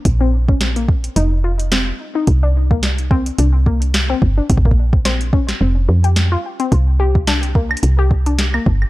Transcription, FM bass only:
X:1
M:4/4
L:1/8
Q:"Swing 16ths" 1/4=108
K:Cm
V:1 name="FM bass" clef=bass
B,,,4 F,,,3 z | C,,4 C,,3 G,,, | B,,,4 F,,, F,,2 z | C,,4 C,,3 G,,, |]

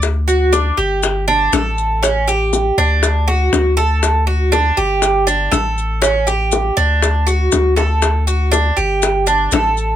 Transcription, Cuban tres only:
X:1
M:4/4
L:1/8
Q:1/4=120
K:D
V:1 name="Cuban tres"
z F D G2 D A2 | C G2 D2 F2 A- | A F D G2 D A2 | C G2 D2 F2 A- |
A F D G2 D A2 |]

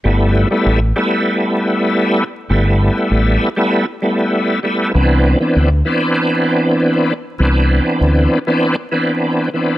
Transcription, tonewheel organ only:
X:1
M:4/4
L:1/16
Q:"Swing 16ths" 1/4=98
K:G
V:1 name="Tonewheel organ"
[G,A,B,E]3 [G,A,B,E]2 z [G,A,B,E]8 z2 | [G,A,B,E]6 z [G,A,B,E]2 z [G,A,B,E]4 [G,A,B,E]2 | [E,B,CD]3 [E,B,CD]2 z [E,B,CD]8 z2 | [E,B,CD]6 z [E,B,CD]2 z [E,B,CD]4 [E,B,CD]2 |]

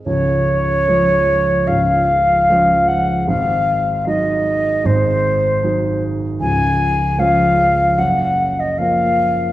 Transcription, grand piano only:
X:1
M:4/4
L:1/8
Q:1/4=76
K:Db
V:1 name="Grand piano" clef=bass
[D,,,D,,]2 [F,A,D]2 [D,,,D,,]2 [F,A,D]2 | [A,,,A,,]2 [G,A,E]2 [A,,,A,,]2 [G,A,E]2 | [D,,,D,,]2 [F,A,D]2 [G,,,G,,]2 [F,B,D]2 |]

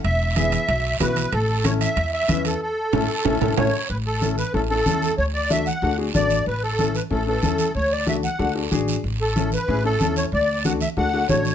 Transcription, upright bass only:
X:1
M:4/4
L:1/8
Q:1/4=187
K:A
V:1 name="Upright bass" clef=bass
E,,,4 B,,,2 B,,,2 | A,,,4 E,,2 E,,2 | z2 A,,, z A,,, A,,, A,,, z | A,,,4 A,,,2 E,,2 |
D,,4 D,,2 A,,,2 | A,,,4 A,,,2 E,,2 | D,,4 D,,2 A,,,2 | A,,,4 A,,,2 E,,2 |
D,,4 D,,2 A,,,2 |]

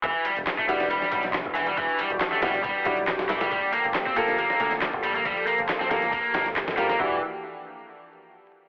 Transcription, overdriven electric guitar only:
X:1
M:4/4
L:1/16
Q:1/4=138
K:Glyd
V:1 name="Overdriven electric guitar" clef=bass
E,2 G, z2 A, G,2 G,2 G, z3 E, G, | E,2 G, z2 A, G,2 G,2 G, z3 E, G, | G,2 _B, z2 =C B,2 B,2 B, z3 G, B, | G,2 _B, z2 =C B,2 B,2 B, z3 G, B, |
E,2 z12 z2 |]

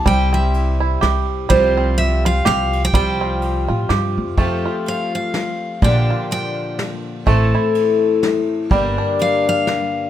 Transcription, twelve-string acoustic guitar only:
X:1
M:3/4
L:1/8
Q:"Swing" 1/4=125
K:F
V:1 name="Twelve-string acoustic guitar"
[C,G,CEG]6 | [C,F,CFG]6 | [C,F,CFG]6 | [F,A,CFG]6 |
[B,,D,F,B,DG]6 | [A,,E,A,CEA]6 | [G,,D,G,B,DB]6 |]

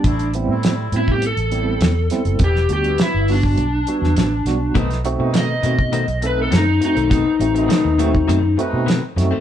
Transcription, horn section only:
X:1
M:4/4
L:1/16
Q:1/4=102
K:Bm
V:1 name="Horn section"
[G,A,=CE]2 z [G,A,CE]3 z4 [G,A,EG]3 z3 | [G,B,DE]2 z [G,B,DE]3 z4 [G,B,DE]3 z3 | [A,B,=C^D]2 z [A,B,CD]3 z4 [A,CDB]3 z3 | [A,B,=C^D]2 z [A,B,CD]3 z4 [A,CDB]3 z3 |]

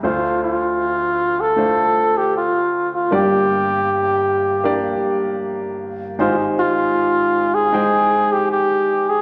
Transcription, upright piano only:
X:1
M:4/4
L:1/8
Q:1/4=78
K:Dm
V:1 name="Upright piano"
[A,DFc]4 [A,DFc]4 | [B,DGd]4 [B,DGd]4 | [_A,_EGc]4 [A,Ecg]4 |]
V:2 name="Upright piano" clef=bass
[D,,D,]8 | [G,,,G,,]8 | [_A,,,_A,,]8 |]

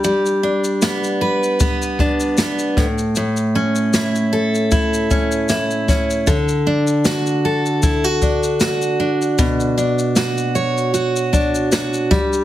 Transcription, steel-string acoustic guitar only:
X:1
M:4/4
L:1/16
Q:"Swing 16ths" 1/4=77
K:Bm
V:1 name="Steel-string acoustic guitar"
G,2 D2 B,2 B2 B,2 D2 B,2 A,,2 | A,,2 C2 E2 A2 E2 C2 E2 C2 | D,2 D2 F2 A2 E F D2 F2 D2 | B,,2 D2 F2 c2 F2 D2 F2 G,2 |]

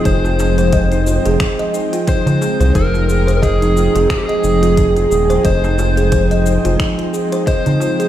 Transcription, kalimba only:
X:1
M:4/4
L:1/16
Q:"Swing 16ths" 1/4=89
K:Fm
V:1 name="Kalimba"
E F A c e E F A c e E F E F A c | E F A c e E F A c e E F E F A c | e E F A c e E F E F A c e E F A |]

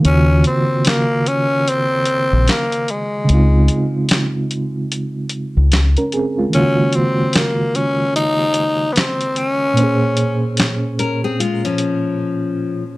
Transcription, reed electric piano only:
X:1
M:4/4
L:1/16
Q:"Swing 16ths" 1/4=74
K:Ebdor
V:1 name="Reed electric piano"
z16 | z12 z [DB] [CA] [A,F]- | [A,F] z12 z3 | z16 |]
V:2 name="Reed electric piano"
[D,E,B,FG]16 | [D,A,CEF]16 | [D,E,B,FG]16 | [B,,B,DAc]16 |]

